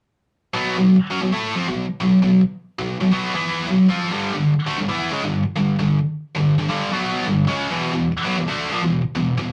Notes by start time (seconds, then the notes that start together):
0.54 B2 F#3 B3
0.78 B2 F#3
1.11 F#3 C#4
1.22 B2 F#3
1.33 A3 E4 A4
1.56 F3 C4
1.68 B2 F#3
2.00 B2 F#3
2.22 B2 F#3
2.79 B2 F#3
3.00 B2 F#3
3.11 B2 F#3 B3
3.34 E3 B3 E4
3.67 B2 F#3
3.89 F3 C4 F4
4.11 G2 D3 G3
4.34 G2 D3
4.67 D3 A3
4.78 G2 D3
4.89 E3 B3 E4
5.11 C#3 G#3
5.24 G2 D3
5.56 G2 D3
5.79 G2 D3
6.35 G2 D3
6.58 G2 D3
6.69 G2 D3 G3
6.92 B2 F#3 B3
7.25 G2 D3
7.47 C#3 G#3 C#4
7.70 E2 B2 E3
7.93 E2 B2
8.25 B2 F#3
8.37 E2 B2
8.48 D3 A3 D4
8.71 A#2 F3
8.82 E2 B2
9.15 E2 B2
9.38 E2 B2